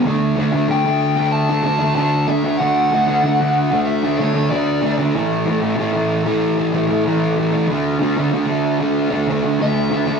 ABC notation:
X:1
M:4/4
L:1/16
Q:1/4=94
K:D
V:1 name="Lead electric guitar"
z4 g4 a4 a2 e2 | f8 e2 c2 d3 z | z16 | z12 e2 e2 |]
V:2 name="Distorted electric guitar"
[D,A,D]2 [D,A,D] [A,D] [D,A,D] [A,D]2 [A,D]2 [A,D] [D,A,D] [A,D] [D,A,D]2 [D,A,D] [A,D] | [D,A,D]2 [D,A,D] [A,D] [D,A,D] [A,D]2 [A,D]2 [A,D] [D,A,D] [A,D] [D,A,D]2 [D,A,D] [A,D] | [A,,E,A,]2 [A,,E,A,] [E,A,] [A,,E,A,] [E,A,]2 [E,A,]2 [E,A,] [A,,E,A,] [E,A,] [A,,E,A,]2 [A,,E,A,] [E,A,] | [D,A,D]2 [D,A,D] [A,D] [D,A,D] [A,D]2 [A,D]2 [A,D] [D,A,D] [A,D] [D,A,D]2 [D,A,D] [A,D] |]